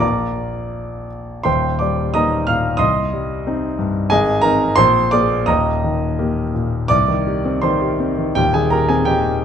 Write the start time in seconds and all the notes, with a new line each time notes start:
Already playing: A#1 A#3
0.00 F4 D5 A#5 D6
1.43 D#1 D#2 C5 G5 C6
1.79 G3 D5 D6
2.14 A#3 D#4 D#5 A#5 D#6
2.47 A#2 F5 F6
2.77 C2 D#5 C6 D#6
3.13 G3
3.47 C4 D#4
3.79 G2
4.10 G#1 G#4 D#5 G#5
4.41 C4 D#4 A#4 A#5
4.76 A#1 C5 C6
5.11 A#3 G#4 D5 D6
5.46 D#1 D#2 D#5 A#5 D#6
5.84 D#3
6.19 A#3 G4
6.54 A#2
6.88 C2 D5 D6
7.08 D#3
7.27 G4
7.45 C4
7.62 D#3 C5 C6
7.82 G4
8.00 C4
8.18 D#3
8.35 D#1 D#2 G4 G5
8.54 D#3 G#4 G#5
8.70 G4 A#4 A#5
8.89 C4 G#4 G#5
9.05 D#3 G4 G5
9.26 G4